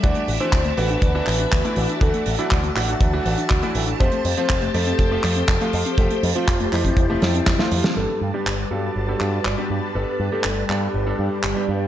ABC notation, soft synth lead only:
X:1
M:4/4
L:1/16
Q:1/4=121
K:G
V:1 name="Soft synth lead"
d3 c3 B8- B z | A3 F3 F8- F z | c3 c3 A8- A z | A3 =F3 E8- E z |
A3 G3 F8- F z | B3 A3 G8- G z |]